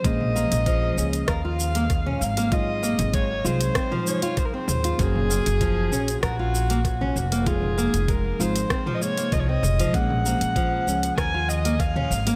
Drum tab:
HH |x--xx--xx--xx--x|x--xx--xx--xx--x|x--xx--xx--xx--x|x--xx--xx--xx--x|
SH |x-xxx-xxx-xxx-xx|x-xxx-xxx-xxx-xx|x-xxx-xxx-xxx-xx|x-xxx-xxx-xxx-xx|
SD |--------r-------|--------r-------|--------r-------|--------r-------|
T2 |-o-----------o--|---------o----o-|-o-----------o--|-o-------o----o-|
BD |o---o---o---o---|o---o---o---o---|o---o---o---o---|o---o---o---o---|

HH |x--xx--xx--xx--x|
SH |x-xxx-xxx-xxx-xx|
SD |--------r-------|
T2 |-o-----------o--|
BD |o---o---o---o---|